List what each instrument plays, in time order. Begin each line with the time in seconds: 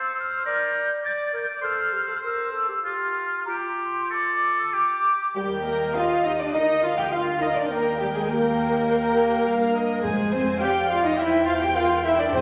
Already playing: oboe C5, flute section E6
0.18 flute section F6
0.45 oboe A#4, clarinet D5, flute section G6
1.04 oboe D5, flute section A6
1.33 clarinet A#4, flute section G6
1.62 clarinet A4, oboe C5, flute section F6
1.93 clarinet G4
2.08 clarinet A4
2.22 clarinet A#4, oboe C5, flute section E6
2.52 clarinet A4
2.68 clarinet G4
2.84 oboe F4, clarinet G4, flute section F6
3.46 clarinet F4, oboe G4, flute section A#5
3.78 flute section C6
4.10 oboe A4, flute section D6
4.59 flute section E6
4.73 oboe G4, flute section D6
5.35 double bass section D#2, cello section G3, french horn section G3, clarinet G4, flute section G4, violin section G4, viola section A#4 G5
5.64 french horn section A#3, cello section A#3, violin section A#4, flute section A#4, clarinet A#4
5.94 french horn section F4, cello section F4, viola section G4 D#5, flute section F5, clarinet F5, violin section F5
6.24 french horn section D#4, cello section D#4, flute section D#5, clarinet D#5, violin section D#5
6.38 french horn section D4, cello section D4, flute section D5, violin section D5, clarinet D5
6.52 double bass section D2, french horn section D#4, cello section D#4, viola section A#4, flute section D#5, violin section D#5, clarinet D#5
6.81 french horn section F4, cello section F4, violin section F5, clarinet F5, flute section F5
6.95 french horn section G4, cello section G4, flute section G5, violin section G5, clarinet G5
7.11 french horn section F4, cello section F4, viola section A#4 F5, violin section F5, flute section F5, clarinet F5
7.40 french horn section D#4, cello section D#4, flute section D#5, violin section D#5, clarinet D#5
7.55 french horn section D4, cello section D4, flute section D5, clarinet D5, violin section D5
7.70 double bass section D#2, french horn section A#3, cello section A#3, flute section A#4, violin section A#4, clarinet A#4, viola section G5
7.99 french horn section G3, cello section G3, flute section G4, clarinet G4, violin section G4
8.13 french horn section G#3, cello section G#3, flute section G#4, violin section G#4, clarinet G#4
8.28 french horn section A#3, cello section A#3, viola section G4, flute section A#4, violin section A#4, clarinet A#4
8.59 viola section G4
8.88 viola section G5
9.46 double bass section G2, viola section A#4 F5
9.75 viola section D#5
10.03 double bass section F2, timpani F2, cello section G#3, french horn section G#3, flute section G#4, violin section G#4, clarinet G#4, viola section C5 G#5
10.32 french horn section C4, cello section C4, violin section C5, clarinet C5, flute section C5
10.61 french horn section G4, cello section G4, viola section D5 F5, clarinet G5, flute section G5, violin section G5
10.89 cello section F4, french horn section F4, clarinet F5, flute section F5, violin section F5
11.03 french horn section D#4, cello section D#4, clarinet D#5, violin section D#5, flute section D#5
11.18 double bass section E2, cello section E4, french horn section E4, viola section C5 G5, clarinet E5, flute section E5, violin section E5
11.46 cello section F4, french horn section F4, clarinet F5, violin section F5, flute section F5
11.60 cello section G4, french horn section G4, violin section G5, clarinet G5, flute section G5
11.75 cello section F4, french horn section F4, viola section A#4, clarinet F5, violin section F5, flute section F5
12.04 cello section E4, french horn section E4, clarinet E5, violin section E5, flute section E5
12.19 cello section D4, french horn section D4, flute section D5, clarinet D5, violin section D5
12.32 timpani F2, double bass section F2, cello section C4, french horn section C4, viola section G#4 G#5, clarinet C5, violin section C5, flute section C5